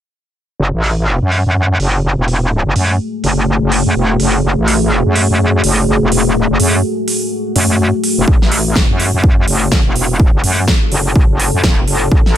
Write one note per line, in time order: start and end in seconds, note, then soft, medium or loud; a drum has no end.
0.59 0.72 F#1 loud
0.59 12.37 A3 medium
0.59 12.37 F#4 medium
0.59 8.24 G#4 medium
0.74 1.20 A1 medium
0.84 open hi-hat loud
1.22 1.44 F#2 medium
1.32 open hi-hat medium
1.46 1.78 F#2 loud
1.80 2.02 F#1 loud
1.80 open hi-hat loud
2.04 2.16 F#1 medium
2.18 2.64 E1 loud
2.28 open hi-hat medium
2.66 2.74 F#1 medium
2.76 2.98 F#2 medium
2.76 open hi-hat loud
3.24 3.60 F#1 medium
3.24 open hi-hat medium
3.62 3.84 F#1 medium
3.72 open hi-hat loud
3.86 3.94 F#2 medium
3.96 4.18 E1 medium
4.20 4.42 F#1 loud
4.20 open hi-hat medium
4.44 4.56 F#1 medium
4.58 5.04 A1 medium
4.68 open hi-hat loud
5.06 5.28 F#2 medium
5.16 open hi-hat medium
5.30 5.62 F#2 loud
5.64 5.86 F#1 medium
5.64 open hi-hat loud
5.88 6.00 F#1 medium
6.02 6.48 E1 loud
6.12 open hi-hat medium
6.50 6.58 F#1 medium
6.60 6.82 F#2 medium
6.60 open hi-hat loud
7.08 open hi-hat medium
7.56 7.92 F#2 medium
7.56 open hi-hat loud
8.04 open hi-hat medium
8.18 8.26 E1 medium
8.28 8.40 F#1 medium
8.28 12.37 A4 medium
8.28 kick loud
8.42 8.88 A1 medium
8.42 snare soft
8.52 open hi-hat loud
8.76 kick loud
8.76 snare loud
8.90 9.12 F#2 medium
9.00 open hi-hat medium
9.14 9.46 F#2 medium
9.24 kick loud
9.48 9.70 F#1 loud
9.48 open hi-hat loud
9.72 9.84 F#1 loud
9.72 kick loud
9.72 snare loud
9.86 10.32 E1 loud
9.96 open hi-hat medium
10.20 kick loud
10.34 10.42 F#1 medium
10.44 10.66 F#2 medium
10.44 open hi-hat loud
10.68 kick loud
10.68 snare loud
10.92 11.28 F#1 medium
10.92 open hi-hat medium
11.16 kick loud
11.30 11.52 F#1 medium
11.40 open hi-hat loud
11.54 11.62 F#2 medium
11.64 11.86 E1 loud
11.64 kick loud
11.64 snare loud
11.88 12.10 F#1 medium
11.88 open hi-hat medium
12.12 12.24 F#1 loud
12.12 kick loud
12.26 12.37 A1 medium
12.26 snare soft